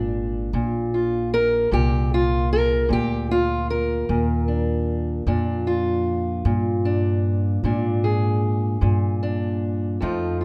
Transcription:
Already playing: G#1 A#2 G#3 D4
0.53 A#1 A#2
0.94 F4
1.34 A#4
1.71 C2 A#2 G4
2.14 F4
2.53 A#4
2.89 D2 A#2 G4
3.31 F4
3.70 A#4
4.09 D#2 A#2
4.48 D4
5.27 F2 A#2 D4
5.67 F4
6.45 G2 A#2
6.85 D4
7.64 G#2 A#2 D4
8.04 G#4
8.81 G2 A#2
9.23 D4
10.01 F2 F3 A3 D#4 F4
10.41 F4

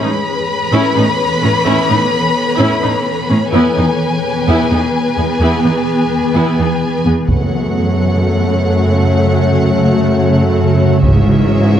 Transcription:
Already playing: E3 B3 A4 B4 C#5 B5
0.02 A2 C#4 D#4
0.72 A2 C#4 E4
0.96 A2 C#4 D#4
1.43 A2 C#4
1.66 A2 C#4 E4
1.89 A2 C#4 D#4
2.59 A2 C#4 E4
2.82 A2 C#4 D#4
3.30 A2 C#4
3.53 E2 E3 B3 E4 G#4 B4 G#5
3.76 E2 B3 D#4
4.48 E2 B3 E4
4.71 E2 B3 D#4
5.18 E2 B3
5.41 E2 B3 E4
5.64 E2 B3 D#4
6.35 E2 B3 E4
6.59 E2 B3 D#4
7.05 E2 B3
7.28 F#1 F#2 C#3 A3 C#4 F#4 A4 C#5 F#5, taiko
11.02 G#1 G#2 E3 G#3 C#4 G#4 C#5 E5, taiko

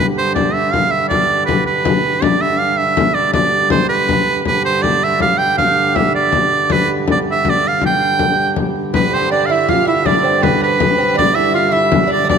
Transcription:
0.00 G2 D3
0.17 C5, frame drum
0.35 D5, frame drum
0.54 E5, frame drum
0.73 F5, frame drum
0.91 E5
1.09 D5, frame drum
1.30 frame drum
1.46 B4, frame drum
1.66 B4, frame drum
1.85 frame drum
2.22 D5, frame drum
2.40 E5, frame drum
2.59 F5
2.77 E5, frame drum
2.97 frame drum
3.14 D5
3.33 D5, frame drum
3.52 frame drum
3.70 C5, frame drum
3.89 B4, frame drum
4.09 frame drum
4.28 frame drum
4.43 G2 D3 B4, frame drum
4.65 C5, frame drum
4.82 D5, frame drum
5.02 E5, frame drum
5.20 F5, frame drum
5.38 G5
5.58 F5, frame drum
5.78 frame drum
5.95 E5, frame drum
6.14 D5, frame drum
6.32 frame drum
6.70 B4, frame drum
6.88 frame drum
7.08 D5, frame drum
7.26 frame drum
7.31 E5
7.45 frame drum
7.49 D5
7.68 F5
7.81 frame drum
7.86 G5
8.00 frame drum
8.19 frame drum
8.56 frame drum
8.76 frame drum
8.93 G2 D3 B3 B4, frame drum
9.11 C4 C5, frame drum
9.29 D4 D5
9.46 E4 F5
9.50 E5, frame drum
9.68 F4 F5, frame drum
9.85 E4 E5
10.06 D4 D5, frame drum
10.22 C4 C5, frame drum
10.41 B3 B4, frame drum
10.59 B3 B4, frame drum
10.66 C5
10.73 B4
10.80 frame drum
10.98 C4
11.14 D4 D5
11.19 frame drum
11.32 E4 E5
11.38 frame drum
11.54 F4 F5
11.70 E4 E5
11.74 frame drum
11.92 frame drum
12.03 E4
12.07 D4 D5
12.12 D5
12.25 D4 D5
12.29 D5, frame drum

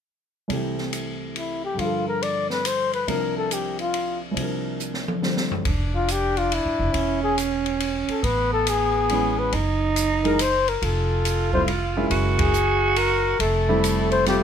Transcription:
0.48 C2 C3 E3, kick, ride
0.52 A3 G4
0.78 snare
0.93 hi-hat pedal, ride
1.36 E4, ride
1.65 G4
1.74 G2 D3
1.79 F3 A#3 F4, kick, ride
1.85 A4
2.08 A#4
2.22 D5, ride
2.50 B4, snare
2.65 C5, hi-hat pedal, ride
2.93 B4, ride
3.08 C2 C3 F3 D4 A#4, kick, ride
3.37 A4
3.51 G4, hi-hat pedal, ride
3.79 F4, ride
3.94 ride
4.31 C2 C3
4.37 F3 D4, kick, ride
4.42 A#4
4.80 hi-hat pedal
4.94 snare
5.08 high tom
5.21 D3 G3 F4 C5, snare
5.37 snare
5.51 floor tom
5.65 F1 D4, kick, ride
5.95 F4
6.08 G4, hi-hat pedal, ride
6.37 F4, ride
6.52 E4, ride
6.65 G1
6.79 F1
6.92 E1 C#4, kick, ride
7.23 G#4
7.38 hi-hat pedal, ride
7.66 ride
7.80 ride
8.08 A4, muted upright bass stroke, ride
8.22 A1 B3 B4, kick, ride
8.53 A4
8.67 G#4, hi-hat pedal, ride
9.09 E3 G#3 B3 C#4, ride
9.39 B4
9.52 F#1 D#4, kick, ride
9.96 hi-hat pedal, ride
10.24 E3 G#3 A#3 D#4 A#4, ride
10.39 C5, hi-hat pedal, ride
10.68 A#4, ride
10.82 F1 F4 A4, kick, ride
11.25 hi-hat pedal, ride
11.53 G3 A3 C4 E4 C5, kick
11.68 ride
11.96 G#3 A#3 C#4 E4
12.10 F#1 F#4, kick, ride
12.39 G#4, kick, ride
12.54 hi-hat pedal
12.96 A#4, ride
13.39 F1 A3 A4, kick, ride
13.69 G3 A3 C4 E4
13.84 hi-hat pedal, ride
14.11 C5, ride
14.26 G3 A3 C4 F4 G4, snare, ride

